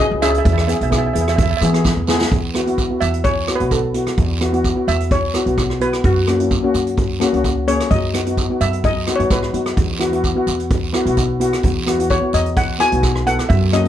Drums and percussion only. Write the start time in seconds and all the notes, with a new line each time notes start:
0.22 cross-stick, closed hi-hat, short guiro
0.34 closed hi-hat
0.45 kick, closed hi-hat, long guiro
0.58 cross-stick
0.69 closed hi-hat
0.81 closed hi-hat
0.92 kick, cross-stick, closed hi-hat, short guiro
1.15 closed hi-hat
1.28 cross-stick, closed hi-hat
1.38 kick, closed hi-hat, long guiro
1.61 closed hi-hat, short guiro
1.74 cross-stick, closed hi-hat
1.84 kick, snare, short guiro
2.07 snare, short guiro
2.21 snare
2.31 kick, closed hi-hat, long guiro
2.55 cross-stick, closed hi-hat
2.67 closed hi-hat
2.78 kick, closed hi-hat, short guiro
3.01 closed hi-hat, short guiro
3.14 closed hi-hat
3.24 kick, closed hi-hat, long guiro
3.48 cross-stick, closed hi-hat, short guiro
3.60 closed hi-hat
3.71 kick, closed hi-hat, short guiro
3.94 closed hi-hat
4.07 cross-stick, closed hi-hat
4.17 kick, closed hi-hat, long guiro
4.41 cross-stick, closed hi-hat
4.54 closed hi-hat
4.64 kick, closed hi-hat, short guiro
4.88 closed hi-hat, short guiro
5.00 closed hi-hat
5.11 kick, closed hi-hat, long guiro
5.34 cross-stick, closed hi-hat, short guiro
5.46 closed hi-hat
5.58 kick, cross-stick, closed hi-hat, short guiro
5.70 cross-stick
5.81 closed hi-hat
5.93 cross-stick, closed hi-hat
6.04 kick, closed hi-hat, long guiro
6.28 cross-stick, closed hi-hat
6.40 closed hi-hat
6.51 kick, closed hi-hat, short guiro
6.74 closed hi-hat, short guiro
6.87 closed hi-hat
6.97 kick, closed hi-hat, long guiro
7.21 cross-stick, closed hi-hat, short guiro
7.34 closed hi-hat
7.44 kick, closed hi-hat, short guiro
7.68 closed hi-hat
7.80 cross-stick, closed hi-hat
7.91 kick, closed hi-hat, long guiro
8.14 cross-stick, closed hi-hat
8.27 closed hi-hat
8.37 kick, closed hi-hat, short guiro
8.61 closed hi-hat, short guiro
8.73 closed hi-hat
8.84 kick, closed hi-hat, long guiro
9.07 cross-stick, closed hi-hat, short guiro
9.20 closed hi-hat
9.30 kick, cross-stick, closed hi-hat, short guiro
9.43 cross-stick
9.54 closed hi-hat
9.66 cross-stick, closed hi-hat
9.77 kick, closed hi-hat, long guiro
10.01 cross-stick, closed hi-hat
10.13 closed hi-hat
10.24 kick, closed hi-hat, short guiro
10.47 closed hi-hat, short guiro
10.60 closed hi-hat
10.71 kick, closed hi-hat, long guiro
10.94 cross-stick, closed hi-hat, short guiro
11.06 closed hi-hat
11.17 kick, closed hi-hat, short guiro
11.41 closed hi-hat
11.53 cross-stick, closed hi-hat
11.63 kick, closed hi-hat, long guiro
11.88 cross-stick, closed hi-hat
12.00 closed hi-hat
12.10 kick, closed hi-hat, short guiro
12.33 closed hi-hat, short guiro
12.46 closed hi-hat
12.57 kick, closed hi-hat, long guiro
12.80 cross-stick, closed hi-hat, short guiro
12.92 closed hi-hat
13.03 kick, cross-stick, closed hi-hat, short guiro
13.15 cross-stick
13.27 closed hi-hat
13.39 cross-stick, closed hi-hat
13.50 kick, closed hi-hat, long guiro
13.73 cross-stick, closed hi-hat